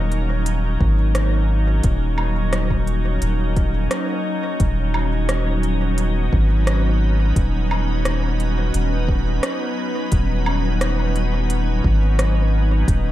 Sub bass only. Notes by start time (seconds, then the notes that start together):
Already playing: D#1
0.81 G#1
1.84 D#1
3.22 D#1
4.60 D#1
6.33 G#1
7.36 D#1
8.75 D#1
10.12 D#1
11.84 G#1
12.88 D#1